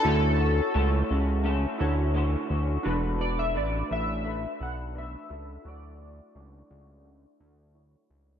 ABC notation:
X:1
M:4/4
L:1/16
Q:1/4=86
K:D
V:1 name="Synth keys"
A4- A z8 z3 | z2 d e d2 e4 f2 e4 | d12 z4 |]
V:2 name="Synth keys"
[EFAc]8- [EFAc]2 [EFAc]6 | [DFAB]12- [DFAB]2 [DFAB]2 | [EFAd]12 [EFAc]4 |]
V:3 name="Clean electric guitar"
[D,A,CFA]2 [CFA]2 [A,CFA]2 [CFA]2 [A,CFA]2 [CFA]2 [D,A,CFA]2 [CFA]2 | [E,A,DAB]2 [DAB]2 [E,A,DAB]2 [DAB]2 [A,DAB]2 [DAB]2 [E,A,DAB]2 [DAB]2 | [D,F,A,DF]2 [A,DF]2 [F,A,DF]2 [A,DF]2 [A,DF]2 [A,DF]2 [D,F,A,DFc]2 [A,DFc]2 |]
V:4 name="Analog synth bass" clef=bass
D,,4 C,,2 C,,4 D,,4 D,,2 | E,,,4 A,,,2 A,,,4 B,,,4 C,,2 | D,,4 C,,2 C,,4 D,,4 C,,2 |]